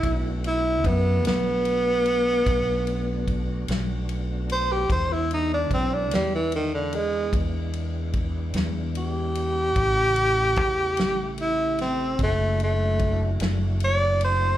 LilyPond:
<<
  \new Staff \with { instrumentName = "Tenor saxophone" } { \time 12/8 \key b \minor \tempo 4. = 49 e'8 e'8 b8 b2. r4 c''16 g'16 | c''16 e'16 dis'16 d'16 c'16 d'16 g16 e16 dis16 d16 gis8 r2 g'4~ | g'2 e'8 c'8 a8 a4 r8 d''8 c''8 | }
  \new Staff \with { instrumentName = "Tonewheel organ" } { \time 12/8 \key b \minor <a b d' fis'>1. | <gis b d' e'>1. | <cis a e' g'>2. <a d' e' fis'>2. | }
  \new Staff \with { instrumentName = "Fingered electric bass" } { \clef bass \time 12/8 \key b \minor b,,4 fis,8 b,,4. b,,4. b,,4. | e,4 b,,8 e,4. e,4. e,4. | a,,4 e,8 a,,4. fis,,4. fis,,4. | }
  \new DrumStaff \with { instrumentName = "Drums" } \drummode { \time 12/8 <bd cymr>8 cymr8 <bd cymr>8 <cymr sn>8 cymr8 cymr8 <bd cymr>8 cymr8 <bd cymr>8 <cymr sn>8 cymr8 cymr8 | <bd cymr>8 cymr8 <bd cymr>8 <cymr sn>8 cymr8 cymr8 <bd cymr>8 cymr8 <bd cymr>8 <cymr sn>8 cymr8 cymr8 | <bd cymr>8 cymr8 <bd cymr>8 <cymr sn>8 cymr8 <cymr sn>8 <bd cymr>8 cymr8 <bd cymr>8 <cymr sn>8 cymr8 cymr8 | }
>>